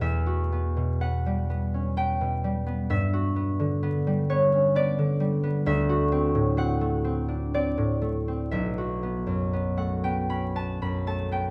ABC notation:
X:1
M:3/4
L:1/16
Q:1/4=63
K:Em
V:1 name="Harp"
[de]4 f4 g4 | e6 ^c2 d4 | e4 f4 d4 | e4- e f g b a b a g |]
V:2 name="Harp"
[E,,B,DG] F B, B,, B, G, B, ^C B, B,, G, B, | G,, F B, D, B, G, B, ^C B, D, G, B, | D,, F C A,, C A, C D C A,, A, C | B,,, F B, F,, B, A, B, ^C B, F,, A, B, |]